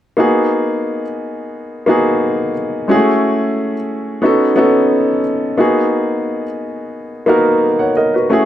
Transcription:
0.17 1.02 A#3 medium
0.17 1.02 B3 medium
0.17 1.03 D#4 medium
0.17 1.03 F#4 medium
0.17 1.04 G#4 medium
1.86 2.50 A#3 medium
1.86 2.51 B3 medium
1.86 2.51 D#4 medium
1.86 2.52 F#4 medium
1.86 2.52 G#4 medium
2.88 2.95 G#3 medium
2.88 3.73 C#4 medium
2.88 3.73 E4 medium
2.88 3.74 F#4 medium
2.88 3.74 G#4 medium
2.94 3.76 A3 medium
4.22 4.50 B3 medium
4.22 4.51 C#4 medium
4.22 4.51 D#4 medium
4.22 4.52 F#4 medium
4.22 4.52 A4 medium
4.56 5.20 B3 medium
4.56 5.21 C#4 medium
4.56 5.21 D#4 medium
4.56 5.21 F#4 medium
4.56 5.21 A4 medium
5.57 6.42 A#3 medium
5.57 6.43 B3 medium
5.57 6.43 D#4 medium
5.57 6.44 F#4 medium
5.57 6.44 G#4 medium
7.26 7.90 A#3 medium
7.26 7.91 B3 medium
7.26 7.91 D#4 medium
7.26 7.63 F#4 medium
7.26 7.63 A#4 medium
7.79 7.96 C#5 soft
7.79 7.95 F#5 medium
7.97 8.13 A#4 medium
7.97 8.13 D#5 medium
8.14 8.30 F#4 soft
8.14 8.45 B4 medium
8.30 8.45 A3 medium
8.30 8.45 C#4 medium
8.30 8.45 E4 medium
8.30 8.45 F#4 medium
8.30 8.45 G#4 medium

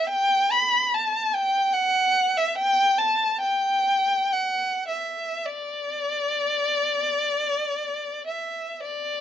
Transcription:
0.09 0.51 G5 loud
0.52 0.94 B5 loud
0.94 1.35 A5 medium
1.35 1.75 G5 loud
1.73 2.36 F#5 loud
2.37 2.58 E5 medium
2.55 2.98 G5 loud
2.98 3.41 A5 loud
3.41 4.32 G5 loud
4.33 4.87 F#5 medium
4.88 5.46 E5 medium
5.46 8.27 D5 medium
8.27 8.80 E5 medium
8.83 9.21 D5 medium

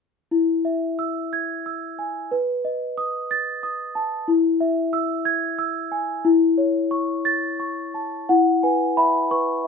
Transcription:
0.31 2.28 E4 medium
0.65 1.19 E5 soft
0.99 1.53 E6 soft
1.33 1.86 G#6 medium
1.66 2.19 E6 soft
1.99 2.32 G#5 soft
2.31 4.24 B4 medium
2.65 3.17 D#5 soft
2.98 3.50 D#6 medium
3.31 3.83 A6 medium
3.63 4.15 D#6 medium
3.95 4.28 A5 medium
4.28 6.21 E4 medium
4.60 5.13 E5 medium
4.93 5.45 E6 medium
5.25 5.78 G#6 medium
5.59 6.12 E6 medium
5.92 6.25 G#5 medium
6.25 8.25 E4 medium
6.58 7.12 C#5 medium
6.91 7.46 C#6 medium
7.25 7.80 A6 medium
7.60 8.16 C#6 medium
7.94 8.29 A5 soft
8.29 9.67 E4 medium
8.29 8.63 F#5 medium
8.63 9.17 B4 soft
8.63 8.97 G#5 medium
8.97 9.51 E5 soft
8.97 9.31 B5 medium
9.31 9.67 B4 soft
9.31 9.67 C#6 medium
9.64 9.67 E5 soft

